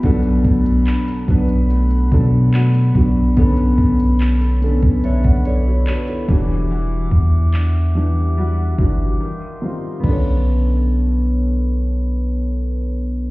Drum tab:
CC |----------------|----------------|----------------|x---------------|
HH |xxxxxxxxxxx-xxx-|xxxxxxxxxxx-xxx-|----------------|----------------|
CP |----x-------x---|----x-------x---|----x-----------|----------------|
FT |----------------|----------------|----------------|o---------------|
BD |o-o---o---o---o-|o-o----o-o----o-|--o-------o-----|o---------------|